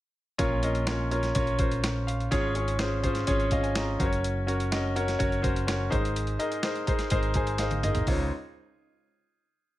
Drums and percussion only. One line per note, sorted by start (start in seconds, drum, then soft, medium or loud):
0.39 kick medium
0.39 closed hi-hat medium
0.63 closed hi-hat medium
0.75 closed hi-hat soft
0.87 snare loud
0.87 closed hi-hat medium
1.11 closed hi-hat medium
1.23 snare soft
1.23 closed hi-hat soft
1.35 kick medium
1.35 closed hi-hat medium
1.47 closed hi-hat soft
1.59 kick medium
1.59 closed hi-hat medium
1.72 closed hi-hat soft
1.84 snare medium
1.84 closed hi-hat medium
2.08 closed hi-hat medium
2.20 closed hi-hat soft
2.32 kick medium
2.32 closed hi-hat medium
2.55 closed hi-hat soft
2.68 closed hi-hat soft
2.79 snare medium
2.79 closed hi-hat medium
3.04 kick medium
3.04 closed hi-hat medium
3.15 snare soft
3.15 closed hi-hat soft
3.27 kick medium
3.27 closed hi-hat medium
3.40 closed hi-hat soft
3.51 kick medium
3.51 closed hi-hat medium
3.64 closed hi-hat soft
3.75 snare medium
3.75 closed hi-hat medium
4.00 kick medium
4.00 closed hi-hat medium
4.13 closed hi-hat soft
4.24 closed hi-hat medium
4.48 closed hi-hat medium
4.60 closed hi-hat soft
4.72 snare medium
4.72 closed hi-hat medium
4.96 closed hi-hat medium
5.08 snare soft
5.08 closed hi-hat soft
5.20 kick medium
5.20 closed hi-hat medium
5.32 closed hi-hat soft
5.44 kick medium
5.44 closed hi-hat medium
5.56 closed hi-hat soft
5.68 snare medium
5.68 closed hi-hat medium
5.92 kick medium
5.92 closed hi-hat medium
6.05 closed hi-hat soft
6.16 closed hi-hat medium
6.27 closed hi-hat soft
6.40 closed hi-hat medium
6.52 closed hi-hat soft
6.63 snare medium
6.63 closed hi-hat medium
6.75 closed hi-hat soft
6.87 kick medium
6.87 closed hi-hat medium
6.99 snare soft
6.99 closed hi-hat soft
7.10 kick medium
7.10 closed hi-hat medium
7.23 closed hi-hat soft
7.34 kick medium
7.34 closed hi-hat medium
7.47 closed hi-hat soft
7.58 snare soft
7.58 closed hi-hat medium
7.71 closed hi-hat soft
7.71 high tom medium
7.83 closed hi-hat medium
7.83 mid tom medium
7.95 closed hi-hat soft
7.95 floor tom medium
8.07 kick medium
8.07 open hi-hat medium